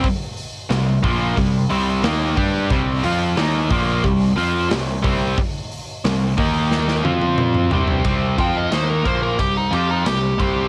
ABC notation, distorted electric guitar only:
X:1
M:4/4
L:1/8
Q:1/4=90
K:F
V:1 name="Distorted electric guitar" clef=bass
z2 [C,G,] [B,,F,B,] [C,G,] [C,G,C] [_E,B,_E] [G,DG] | [C,G,C] [F,CF] [_E,B,_E] [B,,F,B,] [C,G,] [F,CF] [C,G,] [C,G,C] | z2 [C,G,] [_E,B,_E]2 [F,CF]2 [C,G,C] | [C,G,C] [F,CF] [_E,B,_E] [B,,F,B,] [C,G,] [F,CF] [C,G,] [C,G,C] |]